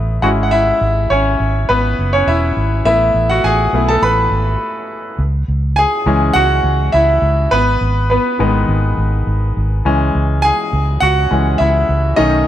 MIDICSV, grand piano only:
0, 0, Header, 1, 2, 480
1, 0, Start_track
1, 0, Key_signature, 4, "minor"
1, 0, Tempo, 582524
1, 432, Time_signature, 4, 2, 24, 8
1, 10279, End_track
2, 0, Start_track
2, 0, Title_t, "Grand piano"
2, 0, Program_c, 0, 0
2, 0, Control_c, 0, 64, 127
2, 0, Note_on_c, 0, 57, 48
2, 0, Note_on_c, 0, 59, 49
2, 0, Note_on_c, 0, 63, 65
2, 0, Note_on_c, 0, 64, 55
2, 0, Note_on_c, 0, 75, 83
2, 0, Note_on_c, 0, 76, 81
2, 184, Note_on_c, 0, 56, 53
2, 184, Note_on_c, 0, 78, 85
2, 190, Note_on_c, 0, 61, 50
2, 194, Note_off_c, 0, 64, 0
2, 194, Note_on_c, 0, 64, 59
2, 195, Note_on_c, 0, 66, 68
2, 203, Note_off_c, 0, 63, 0
2, 203, Control_c, 0, 64, 0
2, 204, Note_off_c, 0, 57, 0
2, 204, Note_off_c, 0, 75, 0
2, 207, Note_off_c, 0, 59, 0
2, 222, Note_off_c, 0, 76, 0
2, 226, Note_off_c, 0, 78, 0
2, 236, Note_off_c, 0, 66, 0
2, 354, Note_on_c, 0, 78, 76
2, 362, Control_c, 0, 64, 127
2, 421, Note_off_c, 0, 64, 0
2, 422, Note_off_c, 0, 78, 0
2, 422, Note_on_c, 0, 76, 95
2, 434, Note_on_c, 0, 64, 69
2, 880, Note_off_c, 0, 64, 0
2, 907, Note_on_c, 0, 73, 81
2, 908, Note_off_c, 0, 61, 0
2, 920, Note_on_c, 0, 61, 67
2, 922, Note_off_c, 0, 76, 0
2, 1364, Note_off_c, 0, 61, 0
2, 1391, Note_on_c, 0, 71, 88
2, 1400, Note_on_c, 0, 59, 67
2, 1405, Note_off_c, 0, 73, 0
2, 1731, Note_off_c, 0, 59, 0
2, 1754, Note_on_c, 0, 73, 79
2, 1763, Note_off_c, 0, 71, 0
2, 1764, Note_on_c, 0, 61, 60
2, 1871, Note_off_c, 0, 61, 0
2, 1876, Note_on_c, 0, 76, 81
2, 1877, Note_off_c, 0, 73, 0
2, 1884, Note_on_c, 0, 64, 69
2, 2076, Note_off_c, 0, 56, 0
2, 2326, Note_off_c, 0, 64, 0
2, 2340, Note_off_c, 0, 76, 0
2, 2352, Note_on_c, 0, 76, 96
2, 2353, Note_on_c, 0, 57, 51
2, 2359, Note_on_c, 0, 59, 49
2, 2362, Control_c, 0, 64, 0
2, 2364, Note_on_c, 0, 64, 79
2, 2511, Control_c, 0, 64, 127
2, 2695, Note_off_c, 0, 64, 0
2, 2715, Note_on_c, 0, 78, 91
2, 2724, Note_off_c, 0, 76, 0
2, 2727, Note_on_c, 0, 66, 69
2, 2833, Note_off_c, 0, 66, 0
2, 2836, Note_on_c, 0, 80, 98
2, 2838, Note_off_c, 0, 78, 0
2, 2849, Note_on_c, 0, 68, 77
2, 3070, Note_off_c, 0, 57, 0
2, 3077, Note_off_c, 0, 59, 0
2, 3082, Note_on_c, 0, 57, 50
2, 3089, Note_on_c, 0, 59, 39
2, 3093, Note_on_c, 0, 64, 47
2, 3177, Note_off_c, 0, 68, 0
2, 3201, Note_on_c, 0, 81, 87
2, 3206, Note_off_c, 0, 80, 0
2, 3212, Note_on_c, 0, 69, 69
2, 3295, Note_off_c, 0, 57, 0
2, 3298, Note_off_c, 0, 59, 0
2, 3301, Note_off_c, 0, 64, 0
2, 3316, Note_off_c, 0, 69, 0
2, 3318, Note_on_c, 0, 83, 102
2, 3321, Note_off_c, 0, 81, 0
2, 3329, Note_on_c, 0, 71, 78
2, 4004, Note_off_c, 0, 83, 0
2, 4009, Note_off_c, 0, 71, 0
2, 4284, Control_c, 0, 64, 0
2, 4451, Control_c, 0, 64, 127
2, 4747, Note_on_c, 0, 80, 102
2, 4768, Note_on_c, 0, 68, 82
2, 4992, Note_on_c, 0, 52, 55
2, 4998, Note_on_c, 0, 56, 53
2, 5001, Note_on_c, 0, 61, 61
2, 5209, Note_off_c, 0, 68, 0
2, 5220, Note_on_c, 0, 78, 108
2, 5240, Note_on_c, 0, 66, 80
2, 5245, Note_off_c, 0, 80, 0
2, 5681, Note_off_c, 0, 52, 0
2, 5684, Note_off_c, 0, 56, 0
2, 5685, Note_off_c, 0, 61, 0
2, 5685, Note_off_c, 0, 66, 0
2, 5706, Note_on_c, 0, 76, 90
2, 5722, Note_off_c, 0, 78, 0
2, 5722, Note_on_c, 0, 64, 69
2, 6157, Note_off_c, 0, 76, 0
2, 6166, Note_off_c, 0, 64, 0
2, 6190, Note_on_c, 0, 71, 102
2, 6204, Note_on_c, 0, 59, 69
2, 6205, Control_c, 0, 64, 0
2, 6372, Control_c, 0, 64, 127
2, 6647, Note_off_c, 0, 59, 0
2, 6661, Note_off_c, 0, 71, 0
2, 6674, Note_on_c, 0, 71, 73
2, 6686, Note_on_c, 0, 59, 61
2, 6911, Note_off_c, 0, 59, 0
2, 6913, Note_on_c, 0, 51, 53
2, 6920, Note_on_c, 0, 56, 51
2, 6924, Note_on_c, 0, 59, 65
2, 7601, Note_off_c, 0, 51, 0
2, 7604, Note_off_c, 0, 56, 0
2, 7606, Note_off_c, 0, 59, 0
2, 7841, Note_off_c, 0, 71, 0
2, 8117, Note_on_c, 0, 52, 58
2, 8124, Note_on_c, 0, 56, 51
2, 8124, Note_on_c, 0, 61, 67
2, 8126, Control_c, 0, 64, 0
2, 8257, Control_c, 0, 64, 127
2, 8587, Note_on_c, 0, 80, 110
2, 8607, Note_on_c, 0, 68, 80
2, 8803, Note_off_c, 0, 52, 0
2, 8806, Note_off_c, 0, 56, 0
2, 8806, Note_off_c, 0, 61, 0
2, 9048, Note_off_c, 0, 68, 0
2, 9068, Note_on_c, 0, 78, 108
2, 9085, Note_off_c, 0, 80, 0
2, 9086, Note_on_c, 0, 66, 76
2, 9316, Note_on_c, 0, 52, 47
2, 9319, Note_on_c, 0, 56, 44
2, 9323, Note_on_c, 0, 61, 54
2, 9527, Note_off_c, 0, 66, 0
2, 9531, Note_off_c, 0, 52, 0
2, 9533, Note_off_c, 0, 56, 0
2, 9535, Note_off_c, 0, 61, 0
2, 9543, Note_on_c, 0, 76, 84
2, 9564, Note_on_c, 0, 64, 66
2, 9565, Note_off_c, 0, 78, 0
2, 10006, Note_off_c, 0, 64, 0
2, 10023, Note_on_c, 0, 75, 95
2, 10027, Note_on_c, 0, 51, 60
2, 10032, Note_on_c, 0, 57, 51
2, 10039, Note_on_c, 0, 61, 62
2, 10039, Note_on_c, 0, 63, 73
2, 10043, Note_off_c, 0, 76, 0
2, 10044, Control_c, 0, 64, 0
2, 10211, Control_c, 0, 64, 127
2, 10279, Note_off_c, 0, 51, 0
2, 10279, Note_off_c, 0, 57, 0
2, 10279, Note_off_c, 0, 61, 0
2, 10279, Note_off_c, 0, 63, 0
2, 10279, Note_off_c, 0, 75, 0
2, 10279, End_track
0, 0, End_of_file